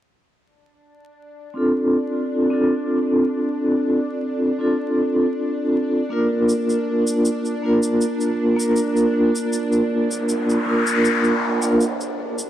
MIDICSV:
0, 0, Header, 1, 5, 480
1, 0, Start_track
1, 0, Key_signature, -1, "minor"
1, 0, Tempo, 759494
1, 258, Time_signature, 4, 2, 24, 8
1, 7899, End_track
2, 0, Start_track
2, 0, Title_t, "Vibraphone"
2, 0, Program_c, 0, 11
2, 973, Note_on_c, 0, 60, 73
2, 979, Note_on_c, 0, 62, 66
2, 987, Note_on_c, 0, 65, 61
2, 995, Note_on_c, 0, 69, 78
2, 1552, Note_off_c, 0, 60, 0
2, 1555, Note_off_c, 0, 62, 0
2, 1559, Note_off_c, 0, 65, 0
2, 1563, Note_off_c, 0, 69, 0
2, 1581, Note_on_c, 0, 60, 77
2, 1586, Note_on_c, 0, 62, 70
2, 1597, Note_on_c, 0, 65, 70
2, 1602, Note_on_c, 0, 69, 86
2, 2869, Note_off_c, 0, 60, 0
2, 2872, Note_off_c, 0, 62, 0
2, 2877, Note_off_c, 0, 65, 0
2, 2880, Note_off_c, 0, 69, 0
2, 2896, Note_on_c, 0, 60, 70
2, 2902, Note_on_c, 0, 62, 64
2, 2908, Note_on_c, 0, 65, 62
2, 2914, Note_on_c, 0, 69, 75
2, 3830, Note_off_c, 0, 60, 0
2, 3833, Note_off_c, 0, 62, 0
2, 3836, Note_off_c, 0, 65, 0
2, 3839, Note_off_c, 0, 69, 0
2, 3850, Note_on_c, 0, 58, 79
2, 3857, Note_on_c, 0, 62, 74
2, 3867, Note_on_c, 0, 65, 73
2, 3873, Note_on_c, 0, 70, 89
2, 4787, Note_off_c, 0, 58, 0
2, 4790, Note_off_c, 0, 62, 0
2, 4795, Note_off_c, 0, 65, 0
2, 4798, Note_off_c, 0, 70, 0
2, 4817, Note_on_c, 0, 58, 76
2, 4826, Note_on_c, 0, 62, 71
2, 4834, Note_on_c, 0, 65, 70
2, 4842, Note_on_c, 0, 70, 80
2, 5394, Note_off_c, 0, 58, 0
2, 5399, Note_off_c, 0, 62, 0
2, 5403, Note_off_c, 0, 65, 0
2, 5406, Note_off_c, 0, 70, 0
2, 5413, Note_on_c, 0, 58, 83
2, 5421, Note_on_c, 0, 62, 77
2, 5427, Note_on_c, 0, 65, 70
2, 5436, Note_on_c, 0, 70, 92
2, 6705, Note_off_c, 0, 58, 0
2, 6709, Note_off_c, 0, 62, 0
2, 6712, Note_off_c, 0, 65, 0
2, 6717, Note_off_c, 0, 70, 0
2, 6733, Note_on_c, 0, 58, 73
2, 6739, Note_on_c, 0, 62, 67
2, 6744, Note_on_c, 0, 65, 66
2, 6755, Note_on_c, 0, 70, 88
2, 7317, Note_off_c, 0, 58, 0
2, 7320, Note_off_c, 0, 62, 0
2, 7323, Note_off_c, 0, 65, 0
2, 7328, Note_off_c, 0, 70, 0
2, 7341, Note_on_c, 0, 58, 81
2, 7345, Note_on_c, 0, 62, 77
2, 7347, Note_on_c, 0, 65, 76
2, 7352, Note_on_c, 0, 70, 95
2, 7405, Note_off_c, 0, 58, 0
2, 7407, Note_off_c, 0, 62, 0
2, 7408, Note_off_c, 0, 65, 0
2, 7410, Note_off_c, 0, 70, 0
2, 7899, End_track
3, 0, Start_track
3, 0, Title_t, "Synth drone"
3, 0, Program_c, 1, 95
3, 247, Note_on_c, 1, 62, 84
3, 7899, Note_off_c, 1, 62, 0
3, 7899, End_track
4, 0, Start_track
4, 0, Title_t, "Noise sweep"
4, 0, Program_c, 2, 103
4, 6014, Note_on_c, 2, 60, 67
4, 7899, Note_off_c, 2, 60, 0
4, 7899, End_track
5, 0, Start_track
5, 0, Title_t, "Drums"
5, 4101, Note_on_c, 9, 82, 67
5, 4164, Note_off_c, 9, 82, 0
5, 4232, Note_on_c, 9, 82, 34
5, 4295, Note_off_c, 9, 82, 0
5, 4469, Note_on_c, 9, 82, 76
5, 4532, Note_off_c, 9, 82, 0
5, 4584, Note_on_c, 9, 82, 70
5, 4647, Note_off_c, 9, 82, 0
5, 4709, Note_on_c, 9, 82, 33
5, 4773, Note_off_c, 9, 82, 0
5, 4947, Note_on_c, 9, 82, 78
5, 5010, Note_off_c, 9, 82, 0
5, 5063, Note_on_c, 9, 82, 60
5, 5126, Note_off_c, 9, 82, 0
5, 5186, Note_on_c, 9, 82, 34
5, 5249, Note_off_c, 9, 82, 0
5, 5433, Note_on_c, 9, 82, 74
5, 5496, Note_off_c, 9, 82, 0
5, 5537, Note_on_c, 9, 82, 60
5, 5600, Note_off_c, 9, 82, 0
5, 5666, Note_on_c, 9, 82, 35
5, 5729, Note_off_c, 9, 82, 0
5, 5911, Note_on_c, 9, 82, 70
5, 5975, Note_off_c, 9, 82, 0
5, 6021, Note_on_c, 9, 82, 63
5, 6084, Note_off_c, 9, 82, 0
5, 6145, Note_on_c, 9, 82, 34
5, 6208, Note_off_c, 9, 82, 0
5, 6390, Note_on_c, 9, 82, 69
5, 6454, Note_off_c, 9, 82, 0
5, 6503, Note_on_c, 9, 82, 67
5, 6566, Note_off_c, 9, 82, 0
5, 6633, Note_on_c, 9, 82, 33
5, 6696, Note_off_c, 9, 82, 0
5, 6868, Note_on_c, 9, 82, 76
5, 6931, Note_off_c, 9, 82, 0
5, 6982, Note_on_c, 9, 82, 62
5, 7045, Note_off_c, 9, 82, 0
5, 7104, Note_on_c, 9, 82, 33
5, 7168, Note_off_c, 9, 82, 0
5, 7344, Note_on_c, 9, 82, 70
5, 7407, Note_off_c, 9, 82, 0
5, 7462, Note_on_c, 9, 82, 59
5, 7525, Note_off_c, 9, 82, 0
5, 7588, Note_on_c, 9, 82, 36
5, 7651, Note_off_c, 9, 82, 0
5, 7828, Note_on_c, 9, 82, 68
5, 7891, Note_off_c, 9, 82, 0
5, 7899, End_track
0, 0, End_of_file